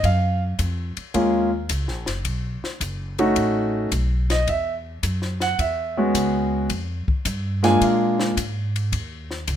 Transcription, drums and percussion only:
0.04 kick, ride
0.59 kick, hi-hat pedal, ride
0.97 ride
1.14 kick, ride
1.69 kick, hi-hat pedal, ride
1.88 snare
2.06 snare, ride
2.25 kick, ride
2.64 snare
2.81 kick, hi-hat pedal, ride
3.19 ride
3.36 kick, ride
3.92 kick, hi-hat pedal, ride
4.30 snare, ride
4.47 kick, ride
5.03 kick, hi-hat pedal, ride
5.22 snare
5.40 snare, ride
5.59 kick, ride
6.14 kick, hi-hat pedal, ride
6.70 kick, ride
7.08 kick
7.25 kick, hi-hat pedal, ride
7.64 snare, ride
7.81 kick, ride
8.20 snare
8.37 kick, hi-hat pedal, ride
8.76 ride
8.93 kick, ride
9.31 snare
9.48 kick, hi-hat pedal, ride

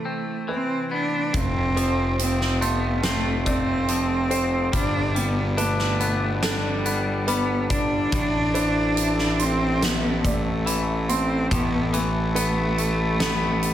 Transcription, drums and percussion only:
1.34 kick, closed hi-hat
1.77 closed hi-hat
2.19 closed hi-hat
2.41 snare
2.62 closed hi-hat
3.03 snare, closed hi-hat
3.46 kick, closed hi-hat
3.88 closed hi-hat
4.31 closed hi-hat
4.73 kick, closed hi-hat
5.16 closed hi-hat
5.58 closed hi-hat
5.79 snare
6.00 closed hi-hat
6.43 snare, closed hi-hat
6.86 closed hi-hat
7.28 closed hi-hat
7.70 kick, closed hi-hat
8.12 kick, closed hi-hat
8.55 closed hi-hat
8.97 closed hi-hat
9.19 snare
9.39 closed hi-hat
9.82 snare, closed hi-hat
10.25 kick, closed hi-hat
10.67 closed hi-hat
11.09 closed hi-hat
11.51 kick, closed hi-hat
11.94 closed hi-hat
12.36 closed hi-hat
12.78 closed hi-hat
13.20 snare, closed hi-hat
13.63 closed hi-hat

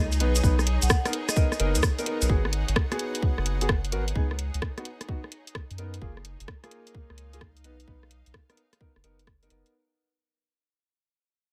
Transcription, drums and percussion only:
0.12 closed hi-hat, cabasa
0.20 closed hi-hat
0.35 closed hi-hat, cabasa
0.43 kick, cabasa
0.59 cross-stick, cabasa
0.67 closed hi-hat
0.82 closed hi-hat, cabasa
0.90 kick, cross-stick, cabasa
1.05 cross-stick, closed hi-hat, cabasa
1.13 closed hi-hat
1.29 cross-stick, closed hi-hat, cabasa
1.36 kick, cabasa
1.52 cross-stick, cabasa
1.60 closed hi-hat
1.75 closed hi-hat, cabasa
1.83 kick, cross-stick, cabasa
1.99 closed hi-hat, cabasa
2.06 closed hi-hat
2.22 closed hi-hat, cabasa
2.29 kick
2.45 cross-stick
2.53 closed hi-hat
2.68 closed hi-hat
2.76 kick, cross-stick
2.92 cross-stick, closed hi-hat
2.99 closed hi-hat
3.15 closed hi-hat
3.22 kick
3.38 cross-stick
3.46 closed hi-hat
3.61 closed hi-hat
3.69 kick, cross-stick
3.85 closed hi-hat
3.92 closed hi-hat
4.08 closed hi-hat
4.15 kick
4.31 cross-stick
4.39 closed hi-hat
4.54 closed hi-hat
4.62 kick, cross-stick
4.78 cross-stick, closed hi-hat
4.85 closed hi-hat
5.01 cross-stick, closed hi-hat
5.08 kick
5.24 cross-stick
5.32 closed hi-hat
5.47 closed hi-hat
5.55 kick, cross-stick
5.71 closed hi-hat
5.78 closed hi-hat
5.94 closed hi-hat
6.02 kick
6.17 cross-stick
6.25 closed hi-hat
6.40 closed hi-hat
6.48 kick, cross-stick
6.64 cross-stick, closed hi-hat
6.71 closed hi-hat
6.87 closed hi-hat
6.95 kick
7.10 cross-stick
7.18 closed hi-hat
7.33 closed hi-hat
7.41 kick, cross-stick
7.57 closed hi-hat
7.64 closed hi-hat
7.80 closed hi-hat
7.88 kick
8.03 cross-stick
8.11 closed hi-hat
8.26 closed hi-hat
8.34 kick, cross-stick
8.50 cross-stick, closed hi-hat
8.57 closed hi-hat
8.73 cross-stick, closed hi-hat
8.81 kick
8.96 cross-stick
9.04 closed hi-hat
9.19 closed hi-hat
9.27 kick, cross-stick
9.43 closed hi-hat
9.50 closed hi-hat
9.66 closed hi-hat

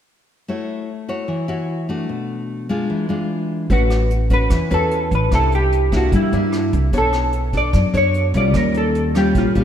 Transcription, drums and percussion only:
3.70 kick, closed hi-hat
3.90 cross-stick, closed hi-hat
4.10 closed hi-hat
4.30 kick, closed hi-hat
4.50 kick, cross-stick, closed hi-hat
4.71 closed hi-hat
4.91 closed hi-hat
5.11 closed hi-hat
5.31 kick, cross-stick, closed hi-hat
5.52 closed hi-hat
5.72 closed hi-hat
5.92 kick, cross-stick, closed hi-hat
6.12 kick, closed hi-hat
6.32 closed hi-hat
6.52 cross-stick, closed hi-hat
6.73 closed hi-hat
6.93 kick, closed hi-hat
7.13 cross-stick, closed hi-hat
7.33 closed hi-hat
7.53 kick, closed hi-hat
7.73 kick, cross-stick, closed hi-hat
7.94 closed hi-hat
8.14 closed hi-hat
8.34 closed hi-hat
8.54 kick, cross-stick, closed hi-hat
8.74 closed hi-hat
8.95 closed hi-hat
9.15 cross-stick, closed hi-hat
9.35 kick, closed hi-hat
9.55 closed hi-hat

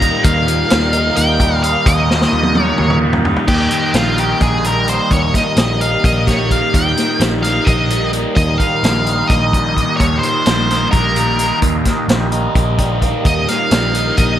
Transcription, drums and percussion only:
0.01 kick, closed hi-hat
0.24 kick, closed hi-hat
0.48 closed hi-hat
0.70 snare, closed hi-hat
0.93 closed hi-hat
1.16 closed hi-hat
1.40 kick, closed hi-hat
1.64 closed hi-hat
1.86 kick, closed hi-hat
2.11 snare
2.22 snare
2.43 high tom
2.55 high tom
2.78 mid tom
2.90 mid tom
3.13 floor tom
3.25 floor tom
3.36 floor tom
3.48 kick, crash
3.71 closed hi-hat
3.94 snare, closed hi-hat
4.18 closed hi-hat
4.41 kick, closed hi-hat
4.64 closed hi-hat
4.88 closed hi-hat
5.11 kick, closed hi-hat
5.34 kick, snare, closed hi-hat
5.57 snare, closed hi-hat
5.81 closed hi-hat
6.04 kick, closed hi-hat
6.27 kick, snare, closed hi-hat
6.51 kick, closed hi-hat
6.74 kick, closed hi-hat
6.97 snare, closed hi-hat
7.20 snare, closed hi-hat
7.44 snare, closed hi-hat
7.67 kick, closed hi-hat
7.90 closed hi-hat
8.13 closed hi-hat
8.37 kick, closed hi-hat
8.60 kick, closed hi-hat
8.84 snare, closed hi-hat
9.06 closed hi-hat
9.30 kick, snare, closed hi-hat
9.53 kick, closed hi-hat
9.77 kick, closed hi-hat
10.00 kick, closed hi-hat
10.23 closed hi-hat
10.46 snare, closed hi-hat
10.71 snare, closed hi-hat
10.93 kick, closed hi-hat
11.16 closed hi-hat
11.39 closed hi-hat
11.62 kick, closed hi-hat
11.85 kick, snare, closed hi-hat
12.09 snare, closed hi-hat
12.32 closed hi-hat
12.55 kick, closed hi-hat
12.78 kick, closed hi-hat
13.02 kick, closed hi-hat
13.25 kick, closed hi-hat
13.48 snare, closed hi-hat
13.71 snare, closed hi-hat
13.95 closed hi-hat
14.17 kick, closed hi-hat

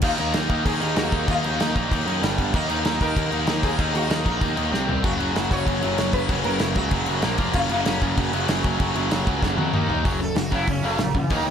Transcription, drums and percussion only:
0.02 kick, crash
0.18 crash
0.34 snare, crash
0.49 kick, crash
0.66 kick, crash
0.81 crash
0.96 snare, crash
1.12 kick, crash
1.28 kick, crash
1.44 crash
1.60 snare, crash
1.76 kick, crash
1.92 kick, crash
2.07 crash
2.23 snare, crash
2.38 kick, crash
2.54 kick, crash
2.69 crash
2.85 snare, crash
3.01 kick, crash
3.17 kick, crash
3.32 crash
3.47 snare, crash
3.63 kick, crash
3.79 kick, crash
3.95 crash
4.10 snare, crash
4.26 kick, crash
4.41 kick, crash
4.57 crash
4.74 snare
4.89 floor tom
5.04 kick, crash
5.20 crash
5.36 snare, crash
5.51 kick, crash
5.67 kick, crash
5.82 crash
5.98 snare, crash
6.13 kick, crash
6.29 kick, crash
6.44 crash
6.59 snare, crash
6.75 kick, crash
6.91 kick, crash
7.06 crash
7.22 snare, crash
7.38 kick, crash
7.53 kick, crash
7.69 crash
7.85 snare, crash
8.02 kick, crash
8.18 kick, crash
8.33 crash
8.48 snare, crash
8.64 kick, crash
8.80 kick, crash
8.95 crash
9.11 snare, crash
9.27 kick, crash
9.43 kick, snare
9.58 high tom
9.74 mid tom
9.90 floor tom
10.05 kick, open hi-hat
10.36 snare, open hi-hat
10.52 kick
10.67 kick, open hi-hat
10.98 snare, open hi-hat
11.15 kick
11.30 kick, open hi-hat

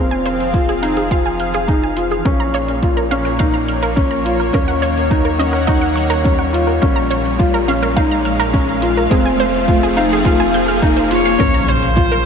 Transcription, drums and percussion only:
0.26 closed hi-hat
0.40 closed hi-hat
0.54 kick, closed hi-hat
0.83 closed hi-hat
0.97 closed hi-hat
1.11 kick, closed hi-hat
1.40 closed hi-hat
1.54 closed hi-hat
1.68 kick, closed hi-hat
1.97 closed hi-hat
2.11 closed hi-hat
2.25 kick, closed hi-hat
2.54 closed hi-hat
2.68 closed hi-hat
2.83 kick, closed hi-hat
3.11 closed hi-hat
3.26 closed hi-hat
3.40 kick, closed hi-hat
3.68 closed hi-hat
3.83 closed hi-hat
3.97 kick, closed hi-hat
4.26 closed hi-hat
4.40 closed hi-hat
4.54 kick, closed hi-hat
4.83 closed hi-hat
4.97 closed hi-hat
5.11 kick, closed hi-hat
5.41 closed hi-hat
5.54 closed hi-hat
5.68 kick, closed hi-hat
5.97 closed hi-hat
6.12 closed hi-hat
6.25 kick, closed hi-hat
6.54 closed hi-hat
6.69 closed hi-hat
6.83 kick, closed hi-hat
7.11 closed hi-hat
7.25 closed hi-hat
7.40 kick, closed hi-hat
7.69 closed hi-hat
7.83 closed hi-hat
7.97 kick, closed hi-hat
8.25 closed hi-hat
8.40 closed hi-hat
8.54 kick, closed hi-hat
8.82 closed hi-hat
8.97 closed hi-hat
9.11 kick, closed hi-hat
9.40 closed hi-hat
9.54 closed hi-hat
9.68 kick, closed hi-hat
9.97 closed hi-hat
10.12 closed hi-hat
10.25 kick, closed hi-hat
10.54 closed hi-hat
10.69 closed hi-hat
10.82 kick, closed hi-hat
11.11 closed hi-hat
11.26 closed hi-hat
11.40 kick, closed hi-hat, crash
11.68 closed hi-hat
11.83 closed hi-hat
11.97 kick, closed hi-hat

